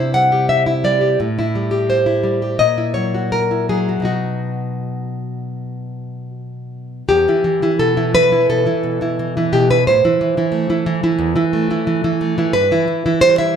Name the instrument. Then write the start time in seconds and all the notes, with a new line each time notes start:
nylon-string guitar
Already playing: C3 E4 C5
0.14 G3 F#5
0.32 G4
0.49 E5
0.66 E4
0.84 G3 D5
1.01 G4
1.20 A2
1.39 E4
1.55 G3
1.71 G4
1.90 C5
2.06 E4
2.23 G3
2.42 G4
2.59 A#2 D#5
2.78 E4
2.94 F#3 C#5
3.14 F#4
3.32 A#4
3.51 E4
3.69 F#3 G#4
3.89 F#4
4.00 B2 F#3 D#4
4.05 F#4
7.09 E2 G4
7.28 E3 E4
7.44 E3
7.62 E3 E4
7.79 B2 A4
7.97 E3 E4
8.14 E3 B4
8.32 E3 E4
8.49 B2 A4
8.66 E3 E4
8.83 B2
9.01 E3 E4
9.19 E3
9.37 E3 E4
9.53 B2 G4
9.70 E3 E4 B4
9.87 A2 C5
10.05 E3 E4
10.21 E3
10.37 E3 E4
10.52 A3
10.70 E3 E4
10.86 E3
11.03 E3 E4
11.19 E2
11.36 E3 E4
11.53 A3
11.71 E3 E4
11.87 E3
12.04 E3 E4
12.21 A3
12.38 E3 E4
12.53 G2 B4
12.71 E3 E4
12.88 E3
13.06 E3 E4
13.21 G3 C5
13.38 E3 E4 E5